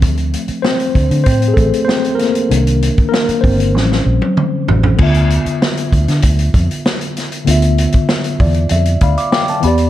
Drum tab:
CC |----------------|----------------|x---------------|----------------|
HH |xxxx-xxxxxxx-xxx|xxxx-xox--------|-xxx-xxxxxxx-xxx|xxxx-xoxxxxx-xxx|
SD |----o-------o-o-|----o---oo------|----o--o----o-o-|----o-------o---|
T1 |----------------|-----------o----|----------------|----------------|
T2 |----------------|------------o---|----------------|----------------|
FT |----------------|--------------oo|----------------|----------------|
BD |o-----o-o-o-----|---o--o---------|o-----o-o-o-----|---o--o---o-----|